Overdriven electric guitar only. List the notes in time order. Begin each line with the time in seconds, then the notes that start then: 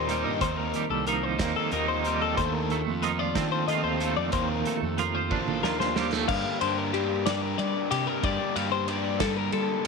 0.09 D#3 G3 A#3 D#4
0.41 F3 A#3 C4 D#4
1.39 F3 A#3 C4 D#4
1.72 F3 A#3 C4 D#4
2.04 F3 A#3 C4 D#4
2.38 A3 D4 F4 A4
3.36 A3 D4 F4 A4
3.68 A3 D4 F4 A4
4.00 A3 D4 F4 A4
4.33 F3 A#3 C4 F4
5.31 F3 A#3 C4 F4
5.63 F3 A#3 C4 F4
5.96 F3 A#3 C4 F4
6.28 G2 D3 G3 A#3 D4 G4
6.60 G3 A#3 D4 G4
6.93 G3 A#3 D4 G4
7.25 G2 D3 G3 A#3 D4 G4
7.91 G3 A#3 D4 G4
8.22 G2 D3 G3 A#3 D4 G4
8.56 G3 A#3 D4 G4
8.88 G3 A#3 D4 G4
9.20 G2 D3 G3 A#3 D4 G4